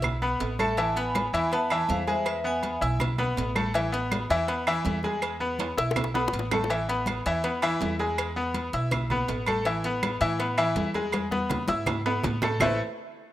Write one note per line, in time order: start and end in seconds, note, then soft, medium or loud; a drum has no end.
0.00 0.37 B1 medium
0.00 0.15 E4 medium
0.00 0.15 E5 medium
0.00 0.15 E6 medium
0.00 cowbell loud
0.00 high conga soft
0.00 low conga medium
0.00 low agogo loud
0.04 claves medium
0.22 0.52 B3 medium
0.22 0.53 B4 medium
0.22 0.53 B5 medium
0.22 high conga soft
0.22 low agogo medium
0.40 1.27 A1 medium
0.40 cowbell medium
0.40 high conga soft
0.40 low timbale medium
0.40 low agogo medium
0.59 0.74 A3 medium
0.59 0.75 A4 medium
0.59 0.94 E5 medium
0.59 0.75 A5 medium
0.59 0.94 A5 loud
0.59 high conga medium
0.59 low agogo loud
0.59 claves medium
0.77 0.93 E3 medium
0.77 0.93 E4 medium
0.77 0.93 E5 medium
0.77 cowbell loud
0.77 low agogo medium
0.96 1.27 B3 medium
0.96 1.27 B4 medium
0.96 1.49 G#5 medium
0.96 1.48 B5 loud
0.96 1.27 B5 medium
0.96 cowbell medium
0.96 high conga soft
1.15 cowbell medium
1.15 high conga medium
1.15 low timbale medium
1.15 low agogo loud
1.15 claves medium
1.33 1.85 E2 medium
1.33 1.49 E3 loud
1.33 1.49 E4 medium
1.33 1.49 E5 medium
1.33 cowbell medium
1.33 high conga soft
1.52 1.67 B3 medium
1.52 1.68 B4 medium
1.52 1.88 E5 medium
1.52 1.91 A5 loud
1.52 1.68 B5 medium
1.52 cowbell loud
1.52 high conga soft
1.52 low agogo medium
1.70 2.01 E3 medium
1.70 2.01 E4 medium
1.70 2.02 E5 medium
1.70 high conga soft
1.70 low agogo loud
1.70 claves medium
1.89 2.76 E2 medium
1.89 2.07 C5 medium
1.89 2.07 F5 medium
1.89 cowbell medium
1.89 high conga medium
1.89 low timbale medium
2.07 2.38 G#3 medium
2.07 2.38 G#4 medium
2.07 2.26 C5 medium
2.07 2.27 E5 medium
2.07 2.38 G#5 medium
2.07 high conga medium
2.07 low agogo medium
2.26 2.36 B4 medium
2.26 2.36 E5 loud
2.26 cowbell loud
2.26 high conga soft
2.26 low agogo loud
2.26 claves medium
2.44 2.75 B3 medium
2.44 2.75 B4 medium
2.44 2.98 E5 medium
2.44 2.97 G#5 medium
2.44 2.75 B5 medium
2.44 high conga soft
2.63 cowbell medium
2.63 high conga medium
2.63 low timbale medium
2.63 low agogo medium
2.81 3.33 B1 loud
2.81 3.12 E4 medium
2.81 3.12 E5 medium
2.81 3.12 E6 medium
2.81 cowbell medium
2.81 high conga soft
3.00 cowbell loud
3.00 high conga soft
3.00 low conga medium
3.00 low agogo loud
3.00 claves medium
3.18 3.49 B3 medium
3.18 3.49 B4 medium
3.18 3.49 B5 medium
3.18 high conga soft
3.18 low conga medium
3.18 low agogo medium
3.37 4.24 A1 medium
3.37 cowbell medium
3.37 high conga soft
3.37 low timbale medium
3.37 low agogo medium
3.55 3.71 A3 medium
3.55 3.71 A4 medium
3.55 3.71 A5 medium
3.55 high conga medium
3.55 low agogo loud
3.55 claves medium
3.74 3.89 E3 medium
3.74 3.90 E4 medium
3.74 3.90 E5 medium
3.74 cowbell loud
3.74 low agogo medium
3.92 4.23 B3 medium
3.92 4.23 B4 medium
3.92 4.23 B5 medium
3.92 cowbell medium
3.92 high conga soft
4.11 cowbell medium
4.11 high conga loud
4.11 low timbale medium
4.11 low agogo loud
4.11 claves medium
4.30 4.81 E2 medium
4.30 4.45 E3 medium
4.30 4.45 E4 medium
4.30 4.46 E5 loud
4.30 cowbell medium
4.30 high conga soft
4.48 4.63 B3 medium
4.48 4.63 B4 medium
4.48 4.64 B5 medium
4.48 cowbell loud
4.48 high conga soft
4.48 low agogo medium
4.67 4.97 E3 loud
4.67 4.98 E4 medium
4.67 4.98 E5 loud
4.67 high conga soft
4.67 low agogo loud
4.67 claves medium
4.85 5.72 E2 medium
4.85 cowbell medium
4.85 high conga loud
4.85 low timbale medium
5.03 5.34 G#3 medium
5.03 5.34 G#4 medium
5.03 5.34 G#5 medium
5.03 high conga medium
5.03 low agogo medium
5.22 cowbell loud
5.22 high conga soft
5.22 low agogo loud
5.22 claves medium
5.40 5.71 B3 medium
5.40 5.71 B4 medium
5.40 5.71 B5 medium
5.40 high conga soft
5.59 cowbell medium
5.59 high conga medium
5.59 high timbale medium
5.59 low agogo medium
5.77 6.29 B1 medium
5.77 6.08 E4 medium
5.77 6.08 E5 medium
5.77 6.08 E6 medium
5.77 cowbell medium
5.77 high bongo loud
5.77 high conga soft
5.91 high bongo loud
5.96 cowbell loud
5.96 high conga soft
5.96 low conga medium
5.96 low timbale loud
5.96 low agogo loud
5.96 claves medium
6.04 high bongo medium
6.14 6.45 B3 medium
6.14 6.45 B4 medium
6.14 6.45 B5 medium
6.14 low bongo medium
6.14 high conga soft
6.14 low timbale loud
6.14 low agogo medium
6.28 low bongo medium
6.33 7.20 A1 medium
6.33 cowbell medium
6.33 high conga soft
6.33 low agogo medium
6.39 low bongo medium
6.51 6.67 A3 medium
6.51 6.68 A4 medium
6.51 6.68 A5 medium
6.51 low bongo medium
6.51 high conga medium
6.51 low timbale loud
6.51 low agogo loud
6.51 claves medium
6.64 low bongo medium
6.70 6.85 E3 medium
6.70 6.85 E4 medium
6.70 6.85 E5 medium
6.70 cowbell loud
6.70 low agogo medium
6.88 7.19 B3 medium
6.88 7.19 B4 medium
6.88 7.19 B5 medium
6.88 cowbell medium
6.88 high conga soft
7.06 cowbell medium
7.06 high conga medium
7.06 low timbale medium
7.06 low agogo loud
7.06 claves medium
7.25 7.77 E2 medium
7.25 7.41 E3 medium
7.25 7.41 E4 loud
7.25 7.41 E5 medium
7.25 cowbell medium
7.25 high conga soft
7.43 7.59 B3 medium
7.43 7.59 B4 medium
7.43 7.60 B5 medium
7.43 cowbell loud
7.43 high conga soft
7.43 low agogo medium
7.62 7.93 E3 loud
7.62 7.93 E4 loud
7.62 7.93 E5 loud
7.62 high conga soft
7.62 low agogo loud
7.62 claves medium
7.81 8.68 E2 medium
7.81 cowbell medium
7.81 high conga loud
7.81 low timbale medium
7.99 8.30 G#3 medium
7.99 8.30 G#4 medium
7.99 8.30 G#5 medium
7.99 low agogo medium
8.18 cowbell loud
8.18 low agogo loud
8.18 claves medium
8.36 8.67 B3 medium
8.36 8.67 B4 medium
8.36 8.67 B5 medium
8.36 high conga soft
8.54 cowbell medium
8.54 high conga medium
8.54 low timbale medium
8.54 low agogo medium
8.73 9.25 B1 loud
8.73 9.04 E4 medium
8.73 9.04 E5 medium
8.73 9.04 E6 medium
8.73 cowbell medium
8.73 high conga soft
8.91 cowbell loud
8.91 high conga soft
8.91 low conga medium
8.91 low agogo loud
8.91 claves medium
9.10 9.41 B3 medium
9.10 9.41 B4 medium
9.10 9.41 B5 medium
9.10 high conga soft
9.10 low conga medium
9.10 low agogo medium
9.28 10.15 A1 medium
9.28 cowbell medium
9.28 high conga soft
9.28 low timbale medium
9.28 low agogo medium
9.46 9.62 A3 medium
9.46 9.63 A4 medium
9.46 9.63 A5 medium
9.46 high conga medium
9.46 low agogo loud
9.46 claves medium
9.65 9.81 E3 medium
9.65 9.81 E4 medium
9.65 9.81 E5 medium
9.65 cowbell loud
9.65 low agogo medium
9.84 10.15 B3 medium
9.84 10.15 B4 medium
9.84 10.16 B5 medium
9.84 cowbell medium
9.84 high conga soft
10.03 cowbell medium
10.03 high conga loud
10.03 low timbale medium
10.03 low agogo loud
10.03 claves medium
10.21 10.73 A2 loud
10.21 10.36 E3 medium
10.21 10.36 E4 loud
10.21 10.37 E5 medium
10.21 cowbell medium
10.21 high conga soft
10.39 10.55 B3 medium
10.39 10.55 B4 medium
10.39 10.55 B5 medium
10.39 cowbell loud
10.39 high conga soft
10.39 low agogo medium
10.57 10.88 E3 loud
10.57 10.88 E4 medium
10.57 10.88 E5 loud
10.57 high conga soft
10.57 low agogo loud
10.57 claves medium
10.76 11.63 E2 loud
10.76 cowbell medium
10.76 high conga loud
10.76 low timbale medium
10.94 11.25 G#3 medium
10.94 11.25 G#4 medium
10.94 11.26 G#5 medium
10.94 high conga medium
10.94 low agogo medium
11.12 cowbell loud
11.12 high bongo medium
11.12 high conga medium
11.12 low agogo loud
11.12 claves medium
11.31 11.62 B3 medium
11.31 11.62 B4 medium
11.31 11.63 B5 medium
11.31 high bongo medium
11.31 high conga loud
11.50 cowbell medium
11.50 high bongo medium
11.50 low conga loud
11.50 low timbale medium
11.50 low agogo medium
11.68 12.20 G#2 medium
11.68 11.99 E4 medium
11.68 11.99 E5 medium
11.68 11.99 E6 medium
11.68 cowbell medium
11.68 low bongo loud
11.68 high conga medium
11.86 cowbell loud
11.86 low conga loud
11.86 high timbale medium
11.86 low agogo loud
11.86 claves medium
12.06 12.36 B3 medium
12.06 12.36 B4 medium
12.06 12.36 B5 medium
12.06 low timbale loud
12.06 low agogo medium
12.23 12.57 A2 loud
12.23 cowbell medium
12.23 low bongo loud
12.23 low conga loud
12.23 low agogo medium
12.42 12.58 A3 medium
12.42 12.58 A4 medium
12.42 12.59 A5 medium
12.42 low bongo loud
12.42 low conga medium
12.42 low timbale medium
12.42 low agogo loud
12.42 claves medium
12.60 12.78 A1 loud
12.60 12.78 A3 medium
12.60 12.79 E4 medium
12.60 12.79 A4 medium
12.60 12.79 B4 medium
12.60 12.79 C5 medium
12.60 12.79 E5 loud
12.60 low bongo loud
12.60 low conga loud
12.60 low timbale loud
12.60 claves loud